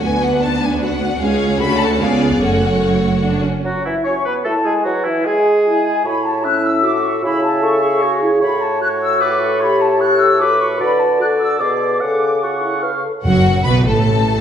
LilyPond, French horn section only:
\new Staff \with { instrumentName = "French horn section" } { \time 3/4 \key fis \minor \tempo 4 = 150 b'4 d'4 fis'4 | gis'4 fis'4 gis'4 | a'2~ a'8 r8 | \key a \major r4 fis'4 e'4 |
b'4 gis'4 e'4 | fis'4 e'4 fis'4 | e'4 a'4 gis'4 | \key fis \minor fis'2 fis'4 |
g'2 a'4 | b'4 a'4 b'4 | a'4 fis'8 e'8 b'8 a'8 | r2. | }